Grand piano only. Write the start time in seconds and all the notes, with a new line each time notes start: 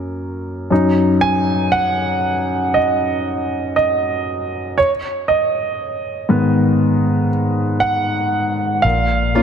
0.70 F#2 F#3 D#4
1.21 G#5
1.72 F#5
2.74 D#5
3.76 D#5
4.78 C#5
5.28 D#5
6.29 G#2 D#3 B3
7.80 F#5
8.82 F5
9.35 A#3 C#4 F4